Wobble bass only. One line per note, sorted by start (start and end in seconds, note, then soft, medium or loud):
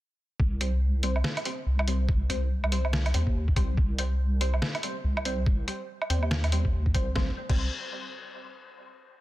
0.40 1.23 C2 loud
1.66 2.28 C2 medium
2.30 3.13 C2 loud
3.14 3.55 D#2 loud
3.56 3.76 C2 medium
3.77 4.61 C2 loud
5.04 5.66 C2 loud
6.10 6.93 D#2 loud
6.94 7.14 C2 medium
7.16 7.29 C2 loud
7.49 7.69 C2 loud